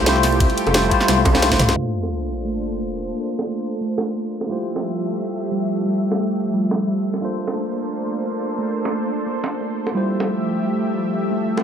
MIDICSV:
0, 0, Header, 1, 7, 480
1, 0, Start_track
1, 0, Tempo, 340909
1, 567, Time_signature, 4, 2, 24, 8
1, 16379, End_track
2, 0, Start_track
2, 0, Title_t, "Tine electric piano"
2, 0, Program_c, 0, 4
2, 51, Note_on_c, 0, 57, 98
2, 70, Note_on_c, 0, 64, 86
2, 87, Note_on_c, 0, 65, 88
2, 106, Note_on_c, 0, 67, 92
2, 125, Note_on_c, 0, 72, 109
2, 1003, Note_off_c, 0, 57, 0
2, 1012, Note_off_c, 0, 64, 0
2, 1021, Note_off_c, 0, 65, 0
2, 1025, Note_on_c, 0, 57, 87
2, 1030, Note_off_c, 0, 67, 0
2, 1035, Note_on_c, 0, 64, 82
2, 1040, Note_off_c, 0, 72, 0
2, 1044, Note_on_c, 0, 65, 84
2, 1054, Note_on_c, 0, 67, 83
2, 1062, Note_on_c, 0, 72, 95
2, 1231, Note_off_c, 0, 57, 0
2, 1248, Note_on_c, 0, 57, 99
2, 1249, Note_off_c, 0, 64, 0
2, 1259, Note_off_c, 0, 65, 0
2, 1264, Note_off_c, 0, 67, 0
2, 1266, Note_on_c, 0, 64, 97
2, 1268, Note_off_c, 0, 72, 0
2, 1286, Note_on_c, 0, 65, 94
2, 1304, Note_on_c, 0, 67, 89
2, 1323, Note_on_c, 0, 72, 108
2, 1843, Note_off_c, 0, 57, 0
2, 1859, Note_off_c, 0, 64, 0
2, 1860, Note_on_c, 0, 57, 97
2, 1870, Note_off_c, 0, 65, 0
2, 1877, Note_on_c, 0, 64, 89
2, 1878, Note_off_c, 0, 67, 0
2, 1888, Note_off_c, 0, 72, 0
2, 1896, Note_on_c, 0, 65, 88
2, 1915, Note_on_c, 0, 67, 90
2, 1934, Note_on_c, 0, 72, 107
2, 2450, Note_on_c, 0, 58, 66
2, 2456, Note_off_c, 0, 57, 0
2, 2465, Note_off_c, 0, 64, 0
2, 2469, Note_off_c, 0, 65, 0
2, 2469, Note_on_c, 0, 62, 59
2, 2484, Note_off_c, 0, 67, 0
2, 2486, Note_on_c, 0, 65, 63
2, 2493, Note_off_c, 0, 72, 0
2, 2524, Note_on_c, 0, 72, 75
2, 6282, Note_off_c, 0, 58, 0
2, 6291, Note_off_c, 0, 62, 0
2, 6291, Note_on_c, 0, 57, 67
2, 6300, Note_off_c, 0, 65, 0
2, 6307, Note_on_c, 0, 64, 62
2, 6319, Note_off_c, 0, 72, 0
2, 6328, Note_on_c, 0, 65, 62
2, 6345, Note_on_c, 0, 67, 65
2, 6364, Note_on_c, 0, 72, 75
2, 10123, Note_off_c, 0, 57, 0
2, 10130, Note_on_c, 0, 58, 65
2, 10131, Note_off_c, 0, 64, 0
2, 10141, Note_off_c, 0, 65, 0
2, 10149, Note_off_c, 0, 67, 0
2, 10150, Note_on_c, 0, 62, 60
2, 10159, Note_off_c, 0, 72, 0
2, 10166, Note_on_c, 0, 65, 61
2, 10185, Note_on_c, 0, 69, 64
2, 10204, Note_on_c, 0, 72, 75
2, 13962, Note_off_c, 0, 58, 0
2, 13968, Note_on_c, 0, 57, 70
2, 13972, Note_off_c, 0, 62, 0
2, 13980, Note_off_c, 0, 65, 0
2, 13986, Note_on_c, 0, 64, 66
2, 13990, Note_off_c, 0, 69, 0
2, 13999, Note_off_c, 0, 72, 0
2, 14005, Note_on_c, 0, 65, 61
2, 14023, Note_on_c, 0, 67, 61
2, 14042, Note_on_c, 0, 72, 77
2, 16379, Note_off_c, 0, 57, 0
2, 16379, Note_off_c, 0, 64, 0
2, 16379, Note_off_c, 0, 65, 0
2, 16379, Note_off_c, 0, 67, 0
2, 16379, Note_off_c, 0, 72, 0
2, 16379, End_track
3, 0, Start_track
3, 0, Title_t, "Analog synth pad"
3, 0, Program_c, 1, 89
3, 0, Note_on_c, 1, 57, 78
3, 0, Note_on_c, 1, 67, 94
3, 2450, Note_off_c, 1, 57, 0
3, 2451, Note_off_c, 1, 67, 0
3, 2482, Note_on_c, 1, 69, 73
3, 2485, Note_on_c, 1, 58, 76
3, 2485, Note_on_c, 1, 72, 88
3, 2486, Note_on_c, 1, 62, 73
3, 6287, Note_off_c, 1, 69, 0
3, 6288, Note_off_c, 1, 58, 0
3, 6288, Note_off_c, 1, 72, 0
3, 6289, Note_off_c, 1, 62, 0
3, 6330, Note_on_c, 1, 57, 78
3, 6330, Note_on_c, 1, 67, 70
3, 6331, Note_on_c, 1, 76, 87
3, 6333, Note_on_c, 1, 53, 74
3, 10131, Note_off_c, 1, 57, 0
3, 10131, Note_off_c, 1, 67, 0
3, 10131, Note_off_c, 1, 76, 0
3, 10132, Note_off_c, 1, 53, 0
3, 10166, Note_on_c, 1, 62, 73
3, 10166, Note_on_c, 1, 69, 69
3, 10168, Note_on_c, 1, 58, 78
3, 10168, Note_on_c, 1, 72, 87
3, 13968, Note_off_c, 1, 62, 0
3, 13968, Note_off_c, 1, 69, 0
3, 13969, Note_off_c, 1, 58, 0
3, 13970, Note_off_c, 1, 72, 0
3, 14010, Note_on_c, 1, 67, 70
3, 14010, Note_on_c, 1, 76, 84
3, 14011, Note_on_c, 1, 53, 69
3, 14011, Note_on_c, 1, 57, 77
3, 16379, Note_off_c, 1, 53, 0
3, 16379, Note_off_c, 1, 57, 0
3, 16379, Note_off_c, 1, 67, 0
3, 16379, Note_off_c, 1, 76, 0
3, 16379, End_track
4, 0, Start_track
4, 0, Title_t, "Synth pluck"
4, 0, Program_c, 2, 84
4, 88, Note_on_c, 2, 55, 78
4, 317, Note_off_c, 2, 55, 0
4, 566, Note_on_c, 2, 57, 85
4, 785, Note_off_c, 2, 57, 0
4, 1048, Note_on_c, 2, 55, 78
4, 1277, Note_off_c, 2, 55, 0
4, 1528, Note_on_c, 2, 55, 85
4, 1757, Note_off_c, 2, 55, 0
4, 2005, Note_on_c, 2, 57, 78
4, 2224, Note_off_c, 2, 57, 0
4, 2486, Note_on_c, 2, 57, 78
4, 2716, Note_off_c, 2, 57, 0
4, 2968, Note_on_c, 2, 58, 73
4, 3186, Note_off_c, 2, 58, 0
4, 3447, Note_on_c, 2, 57, 81
4, 3676, Note_off_c, 2, 57, 0
4, 3926, Note_on_c, 2, 57, 77
4, 4156, Note_off_c, 2, 57, 0
4, 4405, Note_on_c, 2, 58, 75
4, 4624, Note_off_c, 2, 58, 0
4, 4886, Note_on_c, 2, 57, 72
4, 5116, Note_off_c, 2, 57, 0
4, 5366, Note_on_c, 2, 57, 82
4, 5596, Note_off_c, 2, 57, 0
4, 5850, Note_on_c, 2, 58, 73
4, 6066, Note_off_c, 2, 58, 0
4, 6329, Note_on_c, 2, 55, 78
4, 6557, Note_off_c, 2, 55, 0
4, 6808, Note_on_c, 2, 55, 69
4, 7037, Note_off_c, 2, 55, 0
4, 7290, Note_on_c, 2, 57, 76
4, 7507, Note_off_c, 2, 57, 0
4, 7766, Note_on_c, 2, 55, 75
4, 7996, Note_off_c, 2, 55, 0
4, 8248, Note_on_c, 2, 55, 81
4, 8477, Note_off_c, 2, 55, 0
4, 8727, Note_on_c, 2, 57, 75
4, 8945, Note_off_c, 2, 57, 0
4, 9207, Note_on_c, 2, 55, 79
4, 9436, Note_off_c, 2, 55, 0
4, 9684, Note_on_c, 2, 55, 73
4, 9915, Note_off_c, 2, 55, 0
4, 10166, Note_on_c, 2, 58, 79
4, 10385, Note_off_c, 2, 58, 0
4, 10647, Note_on_c, 2, 57, 72
4, 10876, Note_off_c, 2, 57, 0
4, 11128, Note_on_c, 2, 57, 76
4, 11357, Note_off_c, 2, 57, 0
4, 11608, Note_on_c, 2, 58, 73
4, 11826, Note_off_c, 2, 58, 0
4, 12087, Note_on_c, 2, 57, 77
4, 12316, Note_off_c, 2, 57, 0
4, 12566, Note_on_c, 2, 57, 74
4, 12796, Note_off_c, 2, 57, 0
4, 13046, Note_on_c, 2, 58, 82
4, 13265, Note_off_c, 2, 58, 0
4, 13526, Note_on_c, 2, 57, 76
4, 13756, Note_off_c, 2, 57, 0
4, 14007, Note_on_c, 2, 55, 82
4, 14236, Note_off_c, 2, 55, 0
4, 14486, Note_on_c, 2, 57, 74
4, 14705, Note_off_c, 2, 57, 0
4, 14966, Note_on_c, 2, 55, 82
4, 15196, Note_off_c, 2, 55, 0
4, 15446, Note_on_c, 2, 55, 79
4, 15676, Note_off_c, 2, 55, 0
4, 15926, Note_on_c, 2, 57, 78
4, 16144, Note_off_c, 2, 57, 0
4, 16379, End_track
5, 0, Start_track
5, 0, Title_t, "Detuned saw bass"
5, 0, Program_c, 3, 39
5, 0, Note_on_c, 3, 36, 85
5, 677, Note_off_c, 3, 36, 0
5, 937, Note_on_c, 3, 29, 106
5, 1271, Note_off_c, 3, 29, 0
5, 1529, Note_on_c, 3, 36, 86
5, 2239, Note_off_c, 3, 36, 0
5, 2247, Note_on_c, 3, 36, 100
5, 2465, Note_off_c, 3, 36, 0
5, 16379, End_track
6, 0, Start_track
6, 0, Title_t, "Sub drop"
6, 0, Program_c, 4, 103
6, 2488, Note_on_c, 4, 60, 63
6, 4408, Note_off_c, 4, 60, 0
6, 16379, End_track
7, 0, Start_track
7, 0, Title_t, "Drums"
7, 89, Note_on_c, 9, 38, 115
7, 89, Note_on_c, 9, 51, 86
7, 92, Note_off_c, 9, 38, 0
7, 92, Note_off_c, 9, 51, 0
7, 92, Note_on_c, 9, 38, 116
7, 92, Note_on_c, 9, 42, 101
7, 92, Note_on_c, 9, 51, 80
7, 219, Note_on_c, 9, 40, 33
7, 233, Note_off_c, 9, 38, 0
7, 233, Note_off_c, 9, 42, 0
7, 233, Note_off_c, 9, 51, 0
7, 327, Note_on_c, 9, 46, 87
7, 330, Note_off_c, 9, 40, 0
7, 330, Note_off_c, 9, 46, 0
7, 330, Note_on_c, 9, 40, 51
7, 330, Note_on_c, 9, 46, 85
7, 330, Note_on_c, 9, 51, 61
7, 456, Note_off_c, 9, 51, 0
7, 456, Note_on_c, 9, 51, 49
7, 471, Note_off_c, 9, 40, 0
7, 471, Note_off_c, 9, 46, 0
7, 568, Note_off_c, 9, 51, 0
7, 568, Note_on_c, 9, 51, 81
7, 570, Note_off_c, 9, 51, 0
7, 570, Note_on_c, 9, 36, 121
7, 570, Note_on_c, 9, 42, 101
7, 570, Note_on_c, 9, 51, 83
7, 700, Note_off_c, 9, 42, 0
7, 700, Note_on_c, 9, 42, 38
7, 710, Note_off_c, 9, 36, 0
7, 711, Note_off_c, 9, 51, 0
7, 809, Note_on_c, 9, 51, 70
7, 811, Note_off_c, 9, 42, 0
7, 811, Note_off_c, 9, 51, 0
7, 811, Note_on_c, 9, 42, 75
7, 811, Note_on_c, 9, 51, 60
7, 938, Note_off_c, 9, 42, 0
7, 938, Note_on_c, 9, 42, 40
7, 942, Note_on_c, 9, 60, 84
7, 952, Note_off_c, 9, 51, 0
7, 1046, Note_on_c, 9, 38, 117
7, 1046, Note_on_c, 9, 51, 91
7, 1050, Note_off_c, 9, 38, 0
7, 1050, Note_off_c, 9, 42, 0
7, 1050, Note_off_c, 9, 51, 0
7, 1050, Note_on_c, 9, 38, 117
7, 1050, Note_on_c, 9, 42, 104
7, 1050, Note_on_c, 9, 51, 80
7, 1083, Note_off_c, 9, 60, 0
7, 1190, Note_off_c, 9, 38, 0
7, 1190, Note_off_c, 9, 42, 0
7, 1190, Note_off_c, 9, 51, 0
7, 1286, Note_on_c, 9, 51, 75
7, 1288, Note_off_c, 9, 51, 0
7, 1288, Note_on_c, 9, 42, 70
7, 1288, Note_on_c, 9, 51, 58
7, 1290, Note_on_c, 9, 36, 58
7, 1415, Note_on_c, 9, 40, 57
7, 1429, Note_off_c, 9, 42, 0
7, 1429, Note_off_c, 9, 51, 0
7, 1430, Note_off_c, 9, 36, 0
7, 1526, Note_on_c, 9, 38, 114
7, 1526, Note_on_c, 9, 51, 82
7, 1527, Note_off_c, 9, 51, 0
7, 1527, Note_on_c, 9, 42, 105
7, 1527, Note_on_c, 9, 48, 63
7, 1527, Note_on_c, 9, 51, 77
7, 1556, Note_off_c, 9, 40, 0
7, 1655, Note_off_c, 9, 48, 0
7, 1655, Note_on_c, 9, 48, 62
7, 1667, Note_off_c, 9, 38, 0
7, 1667, Note_off_c, 9, 42, 0
7, 1667, Note_off_c, 9, 51, 0
7, 1765, Note_on_c, 9, 51, 60
7, 1765, Note_on_c, 9, 60, 94
7, 1769, Note_off_c, 9, 51, 0
7, 1769, Note_on_c, 9, 36, 103
7, 1769, Note_on_c, 9, 42, 71
7, 1769, Note_on_c, 9, 51, 54
7, 1796, Note_off_c, 9, 48, 0
7, 1898, Note_off_c, 9, 42, 0
7, 1898, Note_on_c, 9, 38, 74
7, 1898, Note_on_c, 9, 40, 50
7, 1898, Note_on_c, 9, 42, 40
7, 1906, Note_off_c, 9, 60, 0
7, 1910, Note_off_c, 9, 36, 0
7, 1910, Note_off_c, 9, 51, 0
7, 2005, Note_off_c, 9, 38, 0
7, 2005, Note_on_c, 9, 38, 106
7, 2005, Note_on_c, 9, 51, 77
7, 2008, Note_off_c, 9, 38, 0
7, 2008, Note_off_c, 9, 42, 0
7, 2008, Note_off_c, 9, 51, 0
7, 2008, Note_on_c, 9, 38, 119
7, 2008, Note_on_c, 9, 42, 101
7, 2008, Note_on_c, 9, 51, 73
7, 2039, Note_off_c, 9, 40, 0
7, 2135, Note_off_c, 9, 38, 0
7, 2135, Note_off_c, 9, 51, 0
7, 2135, Note_on_c, 9, 38, 101
7, 2135, Note_on_c, 9, 51, 81
7, 2136, Note_off_c, 9, 38, 0
7, 2136, Note_off_c, 9, 42, 0
7, 2136, Note_on_c, 9, 38, 82
7, 2136, Note_on_c, 9, 40, 33
7, 2136, Note_on_c, 9, 42, 37
7, 2138, Note_on_c, 9, 36, 63
7, 2246, Note_off_c, 9, 38, 0
7, 2246, Note_off_c, 9, 51, 0
7, 2246, Note_on_c, 9, 38, 114
7, 2246, Note_on_c, 9, 51, 85
7, 2248, Note_off_c, 9, 51, 0
7, 2248, Note_on_c, 9, 45, 108
7, 2248, Note_on_c, 9, 46, 83
7, 2248, Note_on_c, 9, 51, 58
7, 2277, Note_off_c, 9, 40, 0
7, 2277, Note_off_c, 9, 42, 0
7, 2278, Note_off_c, 9, 36, 0
7, 2375, Note_off_c, 9, 38, 0
7, 2375, Note_on_c, 9, 38, 94
7, 2375, Note_on_c, 9, 40, 50
7, 2376, Note_off_c, 9, 38, 0
7, 2376, Note_off_c, 9, 51, 0
7, 2376, Note_on_c, 9, 38, 105
7, 2376, Note_on_c, 9, 51, 84
7, 2380, Note_on_c, 9, 60, 63
7, 2389, Note_off_c, 9, 45, 0
7, 2389, Note_off_c, 9, 46, 0
7, 2516, Note_off_c, 9, 40, 0
7, 2517, Note_off_c, 9, 38, 0
7, 2517, Note_off_c, 9, 51, 0
7, 2520, Note_off_c, 9, 60, 0
7, 2859, Note_on_c, 9, 60, 70
7, 3000, Note_off_c, 9, 60, 0
7, 4771, Note_on_c, 9, 60, 75
7, 4912, Note_off_c, 9, 60, 0
7, 5602, Note_on_c, 9, 60, 97
7, 5743, Note_off_c, 9, 60, 0
7, 6210, Note_on_c, 9, 60, 57
7, 6351, Note_off_c, 9, 60, 0
7, 6701, Note_on_c, 9, 60, 84
7, 6841, Note_off_c, 9, 60, 0
7, 8611, Note_on_c, 9, 60, 74
7, 8752, Note_off_c, 9, 60, 0
7, 9450, Note_on_c, 9, 60, 78
7, 9591, Note_off_c, 9, 60, 0
7, 10047, Note_on_c, 9, 60, 55
7, 10188, Note_off_c, 9, 60, 0
7, 10524, Note_on_c, 9, 60, 74
7, 10665, Note_off_c, 9, 60, 0
7, 12464, Note_on_c, 9, 60, 77
7, 12605, Note_off_c, 9, 60, 0
7, 13287, Note_on_c, 9, 60, 83
7, 13428, Note_off_c, 9, 60, 0
7, 13892, Note_on_c, 9, 60, 59
7, 14033, Note_off_c, 9, 60, 0
7, 14364, Note_on_c, 9, 60, 74
7, 14505, Note_off_c, 9, 60, 0
7, 16297, Note_on_c, 9, 60, 72
7, 16379, Note_off_c, 9, 60, 0
7, 16379, End_track
0, 0, End_of_file